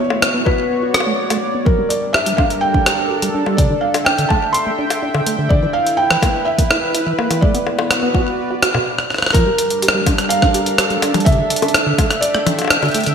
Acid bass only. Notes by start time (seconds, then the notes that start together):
Already playing: B3
0.10 A3
0.22 B3
0.34 B3
0.46 F#4
0.82 F#4
0.94 B3
1.06 A3
1.30 A3
1.54 B3
1.66 F3
1.78 G3
2.14 G4
2.26 G3
2.38 D4
2.74 D4
2.86 G4
3.10 G4
3.22 G3
3.34 D4
3.46 G3
3.58 C3
3.70 D3
4.06 D4
4.18 D3
4.30 A3
4.66 A3
4.79 D4
5.02 D4
5.14 D3
5.26 A3
5.38 D3
5.50 D3
5.62 E3
5.99 E4
6.10 E3
6.23 A#3
6.58 A#3
6.70 E4
6.94 E4
7.06 E3
7.18 A#3
7.30 E3
7.42 A3
7.54 B3
7.90 B3
8.03 B3
8.14 F#4
8.50 F#4
8.62 F#4
8.74 B2
9.34 F3
9.46 G3
9.83 G4
9.94 G3
10.06 D4
10.42 D4
10.54 G4
10.78 G4
10.90 G3
11.02 D4
11.14 G3
11.26 C3
11.38 D3
11.74 D4
11.86 D3
11.98 A3
12.34 A3
12.46 D4
12.70 D4
12.82 D3
12.94 A3
13.07 D3